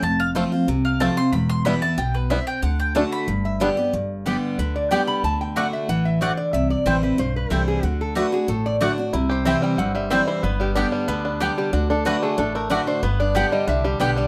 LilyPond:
<<
  \new Staff \with { instrumentName = "Mandolin" } { \time 4/4 \key g \major \tempo 4 = 185 a''8 f''8 r4. f''8 a''8 c'''8 | b''8 c'''8 b''8 a''8 g''8 b'8 e''8 g''8 | fis''8 g''8 a''8 b''2~ b''16 r16 | r4 <b g' d'' g''>8 r4. <b g' d'' g''>8 r8 |
r4 <a fis' d'' fis''>8 r4. <a fis' d'' fis''>8 r8 | r4 <c' e' c'' g''>8 r4. <c' e' c'' g''>8 r8 | r4 <a fis' d'' fis''>8 r4. <a fis' d'' fis''>8 r8 | r4 <c' e' c'' g''>8 r4. <c' e' c'' g''>8 r8 |
r4 <b g' d'' g''>8 r4. <b g' d'' g''>8 r8 | r4 <a fis' d'' fis''>8 r4. <a fis' d'' fis''>8 r8 | r4 <b g' d'' g''>8 r4. <b g' d'' g''>8 r8 | }
  \new Staff \with { instrumentName = "Resonator guitar played with a steel bar" } { \time 4/4 \key g \major r1 | r1 | r2 r8 e''8 d''4 | r2 b'8 d''8 g''8 b''8 |
a''8 g''8 fis''8 e''8 fis''8 e''8 c''8 d''8 | e''8 d''8 c''8 b'8 c''8 b'8 a'8 aes'8 | fis'8 a'8 b'8 aes'8 a'8 d''8 r4 | r8 c''8 e''8 g''8 fis''8 e''8 d''8 c''8 |
b'8 g'8 r4 b'4. g'8 | fis'8 a'8 b'8 aes'8 a'8 bes'8 b'8 c''8 | b'8 d''8 fis''8 ees''8 e''8 g'8 b'8 d''8 | }
  \new Staff \with { instrumentName = "Five-string banjo" } { \time 4/4 \key g \major r4 <a c' f'>8 r4. <a c' f'>8 r8 | r4 <g b e'>8 r4. <g b e'>8 r8 | r4 <a d'>8 r4. <g b d'>8 r8 | r1 |
r1 | r1 | r1 | e'8 g'8 e'8 g8 c'8 g8 c'8 e'8 |
b8 g8 d'8 g8 b8 d'8 g'8 g8 | d'8 d'8 d'8 a8 d'8 a8 d'8 d'8 | b8 d'8 g'8 g8 d'8 g8 d'8 g8 | }
  \new Staff \with { instrumentName = "Steel-string acoustic guitar" } { \time 4/4 \key g \major << { r4 <f a c' f'>8 <c' f'>8 r4 <f a c' f'>8 <c' f'>8 | r4 <e g b e'>8 <b e'>8 r2 | r4 <d a d' fis'>4 r4 <d g b g'>8 <b g'>8 | r4 <d g b g'>4 r4 <d g b g'>4 |
r4 <d a d' fis'>4 r2 | r4 <e g c' e'>8 <c' e'>8 r4 <e g c' e'>4 | r4 <d a d' fis'>8 <d' fis'>8 r4 <d a d' fis'>8 <d' fis'>8 | r4 <e g c' e'>4 r4 <e g c' e'>4 |
r4 <d g b g'>4 r4 <d g b g'>4 | r4 <d a d' fis'>4 r4 <d a d' fis'>4 | r4 <d g b g'>4 r4 <d g b g'>4 | } \\ { f,2 c2 | e,2 b,4 c'4 | d2 g,2 | g,2 d2 |
d2 e4 d4 | c2 g,2 | d2 a,2 | c2 g,2 |
g,2 d2 | d2 a,2 | g,2 d2 | } >> }
  \new Staff \with { instrumentName = "Upright bass" } { \clef bass \time 4/4 \key g \major f,,2 c,2 | e,,2 b,,2 | d,2 g,,2 | g,,2 d,2 |
d,2 a,,2 | c,4 a,,4 b,,4 c,4 | d,2 a,,2 | c,2 g,,2 |
g,,2 d,2 | d,2 a,,2 | g,,2 c,4 b,,4 | }
>>